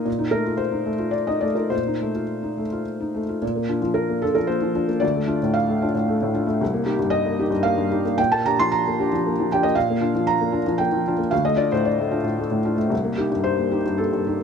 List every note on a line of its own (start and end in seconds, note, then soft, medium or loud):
0.05 1.67 A#2 soft
0.19 0.40 D#4 soft
0.31 0.54 A3 soft
0.31 0.59 A#4 medium
0.46 0.89 F4 soft
0.57 1.13 C5 medium
0.72 0.94 D#4 soft
0.85 1.08 A3 soft
0.99 1.45 F4 soft
1.11 1.27 D5 medium
1.27 1.51 D#4 soft
1.27 1.42 D#5 medium
1.41 1.66 A3 soft
1.41 1.56 D5 medium
1.55 1.80 F4 soft
1.55 1.71 A#4 medium
1.70 3.38 A#2 soft
1.70 2.85 C5 medium
1.87 2.09 D#4 soft
2.01 2.24 A3 soft
2.15 2.60 F4 soft
2.42 2.66 D#4 soft
2.58 2.80 A3 soft
2.72 3.18 F4 soft
3.00 3.23 D#4 soft
3.14 3.37 A3 soft
3.29 3.42 F4 soft
3.42 4.98 A#2 soft
3.55 3.77 A#3 soft
3.69 3.81 D4 soft
3.69 3.82 F4 soft
3.81 4.25 F3 soft
3.94 4.22 A#4 medium
4.09 4.31 A#3 soft
4.22 4.35 D4 soft
4.22 4.35 F4 soft
4.22 4.36 A4 medium
4.35 4.57 F3 soft
4.35 4.49 A#4 medium
4.47 4.70 A#3 soft
4.47 5.01 C5 medium
4.62 4.83 F3 soft
4.75 4.87 D4 soft
4.75 4.87 F4 soft
4.88 5.02 A#3 soft
5.00 6.56 D2 medium
5.00 5.54 D5 medium
5.14 5.36 A3 soft
5.27 5.40 D4 soft
5.27 5.40 F4 soft
5.43 5.85 A2 soft
5.54 6.60 F5 medium
5.68 5.89 A3 soft
5.82 5.94 D4 soft
5.82 5.94 F4 soft
5.94 6.16 A2 soft
6.08 6.29 A3 soft
6.22 6.43 A2 soft
6.34 6.46 D4 soft
6.34 6.46 F4 soft
6.46 6.60 A3 soft
6.61 8.15 C2 medium
6.74 6.95 A#3 medium
6.85 6.98 D#4 soft
6.85 6.98 G4 medium
6.99 7.42 G2 soft
7.10 7.64 D#5 medium
7.25 7.47 A#3 soft
7.39 7.51 D#4 soft
7.39 7.51 G4 soft
7.50 7.73 G2 medium
7.63 7.86 A#3 soft
7.63 8.17 F5 medium
7.77 7.99 G2 soft
7.91 8.03 D#4 soft
7.91 8.04 G4 medium
8.05 8.18 A#3 soft
8.18 9.71 A#2 medium
8.18 8.31 G5 medium
8.32 8.53 A#3 medium
8.32 8.45 A5 medium
8.46 8.57 D4 soft
8.46 8.58 G4 medium
8.46 8.58 A#5 loud
8.59 9.01 F3 soft
8.59 8.72 C6 medium
8.72 9.49 A#5 medium
8.87 9.07 A#3 soft
9.00 9.11 D4 medium
9.00 9.11 G4 medium
9.13 9.32 F3 medium
9.26 9.45 A#3 soft
9.40 9.59 F3 soft
9.52 9.63 D4 medium
9.52 9.63 G4 medium
9.52 9.64 G5 medium
9.63 9.76 A#3 soft
9.63 9.76 D#5 medium
9.75 11.29 A#2 medium
9.75 10.27 F5 medium
9.90 10.10 A#3 medium
10.01 10.13 D4 medium
10.01 10.13 F4 medium
10.15 10.56 F3 soft
10.27 10.79 A#5 loud
10.41 10.61 A#3 soft
10.52 10.64 D4 soft
10.52 10.64 F4 medium
10.66 10.87 F3 medium
10.78 11.00 A#3 soft
10.78 11.31 G5 medium
10.92 11.13 F3 soft
11.07 11.18 D4 soft
11.07 11.19 F4 medium
11.18 11.32 A#3 soft
11.31 12.88 D2 medium
11.31 11.45 F5 medium
11.45 11.67 A3 soft
11.45 11.59 D#5 medium
11.57 11.70 D4 medium
11.57 11.71 F4 medium
11.57 11.71 D5 medium
11.72 12.15 A2 soft
11.72 11.86 C5 medium
11.85 12.38 D5 medium
11.99 12.20 A3 soft
12.11 12.24 D4 soft
12.11 12.24 F4 medium
12.24 12.46 A2 soft
12.38 12.60 A3 soft
12.51 12.73 A2 soft
12.65 12.77 D4 soft
12.65 12.77 F4 medium
12.77 12.91 A3 soft
12.90 14.43 C2 medium
13.04 13.26 A#3 soft
13.18 13.30 D#4 soft
13.18 13.30 G4 soft
13.31 13.75 G2 soft
13.44 13.99 C5 medium
13.58 13.80 A#3 soft
13.71 13.84 D#4 soft
13.71 13.84 G4 soft
13.85 14.07 G2 soft
13.98 14.21 A#3 soft
13.98 14.43 A4 medium
14.13 14.35 G2 soft
14.27 14.39 D#4 soft
14.27 14.39 G4 soft